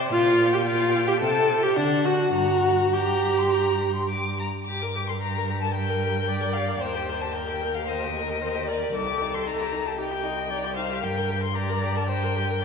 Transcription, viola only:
0, 0, Header, 1, 2, 480
1, 0, Start_track
1, 0, Key_signature, -2, "minor"
1, 0, Tempo, 545951
1, 112, Time_signature, 4, 2, 24, 8
1, 1552, Tempo, 580271
1, 3952, Tempo, 536673
1, 6832, Tempo, 525394
1, 11181, End_track
2, 0, Start_track
2, 0, Title_t, "Viola"
2, 0, Program_c, 0, 41
2, 110, Note_on_c, 0, 65, 107
2, 475, Note_on_c, 0, 67, 64
2, 488, Note_off_c, 0, 65, 0
2, 570, Note_off_c, 0, 67, 0
2, 575, Note_on_c, 0, 65, 91
2, 931, Note_off_c, 0, 65, 0
2, 945, Note_on_c, 0, 67, 78
2, 993, Note_off_c, 0, 67, 0
2, 1054, Note_on_c, 0, 69, 86
2, 1434, Note_on_c, 0, 67, 82
2, 1447, Note_off_c, 0, 69, 0
2, 1550, Note_on_c, 0, 62, 88
2, 1562, Note_off_c, 0, 67, 0
2, 1790, Note_on_c, 0, 66, 82
2, 1803, Note_off_c, 0, 62, 0
2, 2018, Note_off_c, 0, 66, 0
2, 2022, Note_on_c, 0, 66, 84
2, 2519, Note_on_c, 0, 67, 70
2, 2532, Note_off_c, 0, 66, 0
2, 3481, Note_off_c, 0, 67, 0
2, 4916, Note_on_c, 0, 70, 54
2, 5395, Note_on_c, 0, 74, 66
2, 5408, Note_off_c, 0, 70, 0
2, 5867, Note_on_c, 0, 72, 55
2, 5881, Note_off_c, 0, 74, 0
2, 6354, Note_on_c, 0, 70, 53
2, 6368, Note_off_c, 0, 72, 0
2, 6819, Note_off_c, 0, 70, 0
2, 6825, Note_on_c, 0, 72, 56
2, 7067, Note_off_c, 0, 72, 0
2, 7071, Note_on_c, 0, 70, 48
2, 7315, Note_on_c, 0, 72, 55
2, 7328, Note_off_c, 0, 70, 0
2, 7551, Note_off_c, 0, 72, 0
2, 7556, Note_on_c, 0, 70, 53
2, 7798, Note_on_c, 0, 69, 62
2, 7811, Note_off_c, 0, 70, 0
2, 8743, Note_on_c, 0, 67, 51
2, 8756, Note_off_c, 0, 69, 0
2, 8983, Note_on_c, 0, 75, 51
2, 8997, Note_off_c, 0, 67, 0
2, 9222, Note_on_c, 0, 74, 58
2, 9236, Note_off_c, 0, 75, 0
2, 9458, Note_off_c, 0, 74, 0
2, 9464, Note_on_c, 0, 72, 55
2, 9700, Note_off_c, 0, 72, 0
2, 9705, Note_on_c, 0, 70, 53
2, 10174, Note_off_c, 0, 70, 0
2, 10182, Note_on_c, 0, 74, 60
2, 10669, Note_on_c, 0, 72, 57
2, 10682, Note_off_c, 0, 74, 0
2, 10912, Note_on_c, 0, 70, 53
2, 10926, Note_off_c, 0, 72, 0
2, 11152, Note_on_c, 0, 74, 63
2, 11166, Note_off_c, 0, 70, 0
2, 11181, Note_off_c, 0, 74, 0
2, 11181, End_track
0, 0, End_of_file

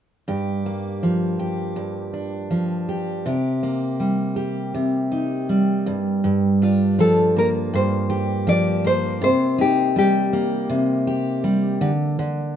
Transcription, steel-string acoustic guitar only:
0, 0, Header, 1, 2, 480
1, 0, Start_track
1, 0, Key_signature, -2, "minor"
1, 0, Tempo, 744417
1, 185, Time_signature, 4, 2, 24, 8
1, 8100, End_track
2, 0, Start_track
2, 0, Title_t, "Steel-string acoustic guitar"
2, 0, Program_c, 0, 25
2, 179, Note_on_c, 0, 43, 60
2, 184, Note_on_c, 0, 67, 53
2, 426, Note_on_c, 0, 58, 43
2, 663, Note_on_c, 0, 53, 49
2, 896, Note_off_c, 0, 67, 0
2, 898, Note_on_c, 0, 67, 53
2, 1128, Note_off_c, 0, 43, 0
2, 1135, Note_on_c, 0, 43, 58
2, 1376, Note_on_c, 0, 62, 46
2, 1608, Note_off_c, 0, 53, 0
2, 1616, Note_on_c, 0, 53, 55
2, 1859, Note_off_c, 0, 67, 0
2, 1861, Note_on_c, 0, 67, 55
2, 2100, Note_on_c, 0, 48, 68
2, 2101, Note_off_c, 0, 67, 0
2, 2104, Note_on_c, 0, 67, 57
2, 2154, Note_off_c, 0, 43, 0
2, 2154, Note_off_c, 0, 53, 0
2, 2154, Note_off_c, 0, 62, 0
2, 2337, Note_off_c, 0, 58, 0
2, 2340, Note_on_c, 0, 58, 49
2, 2578, Note_on_c, 0, 55, 58
2, 2810, Note_off_c, 0, 67, 0
2, 2812, Note_on_c, 0, 67, 52
2, 3052, Note_off_c, 0, 48, 0
2, 3059, Note_on_c, 0, 48, 63
2, 3299, Note_on_c, 0, 63, 52
2, 3539, Note_off_c, 0, 55, 0
2, 3541, Note_on_c, 0, 55, 57
2, 3781, Note_on_c, 0, 43, 68
2, 3836, Note_off_c, 0, 48, 0
2, 3836, Note_off_c, 0, 63, 0
2, 4015, Note_off_c, 0, 43, 0
2, 4023, Note_on_c, 0, 43, 67
2, 4268, Note_on_c, 0, 62, 54
2, 4502, Note_off_c, 0, 55, 0
2, 4505, Note_on_c, 0, 53, 57
2, 4524, Note_off_c, 0, 67, 0
2, 4597, Note_off_c, 0, 58, 0
2, 4748, Note_on_c, 0, 58, 50
2, 4980, Note_off_c, 0, 43, 0
2, 4988, Note_on_c, 0, 43, 72
2, 5221, Note_on_c, 0, 67, 59
2, 5453, Note_off_c, 0, 53, 0
2, 5461, Note_on_c, 0, 53, 61
2, 5699, Note_off_c, 0, 58, 0
2, 5702, Note_on_c, 0, 58, 50
2, 5942, Note_on_c, 0, 48, 69
2, 5996, Note_off_c, 0, 53, 0
2, 5999, Note_off_c, 0, 43, 0
2, 5999, Note_off_c, 0, 62, 0
2, 6179, Note_on_c, 0, 63, 53
2, 6422, Note_on_c, 0, 55, 56
2, 6659, Note_off_c, 0, 58, 0
2, 6661, Note_on_c, 0, 58, 54
2, 6889, Note_off_c, 0, 48, 0
2, 6896, Note_on_c, 0, 48, 72
2, 7137, Note_off_c, 0, 67, 0
2, 7140, Note_on_c, 0, 67, 61
2, 7368, Note_off_c, 0, 55, 0
2, 7375, Note_on_c, 0, 55, 60
2, 7613, Note_off_c, 0, 48, 0
2, 7615, Note_on_c, 0, 50, 73
2, 7672, Note_off_c, 0, 55, 0
2, 7673, Note_off_c, 0, 63, 0
2, 7674, Note_off_c, 0, 67, 0
2, 7851, Note_off_c, 0, 50, 0
2, 7859, Note_on_c, 0, 50, 74
2, 8100, Note_off_c, 0, 50, 0
2, 8100, Note_off_c, 0, 58, 0
2, 8100, End_track
0, 0, End_of_file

